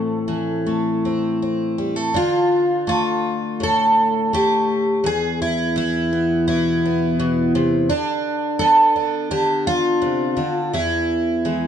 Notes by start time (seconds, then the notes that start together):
Already playing: A2 E3 A3 C4 A4
0.28 E3
0.66 A3
1.05 C4
1.42 C4
1.78 G3
1.96 A3
2.14 D3 F4
2.87 A3 F4
3.60 A2 A4
4.33 A3 G4
5.04 E2 G#4
5.42 E4
5.76 E3 E4
6.13 B3
6.48 B2 E4
6.86 B3
7.19 B2
7.55 C3
7.89 D3 D4
8.59 B3 A4
8.96 D4
9.31 D3 G4
9.67 F4
10.02 C3
10.37 D3
10.73 E2 E4
11.45 E3 G#3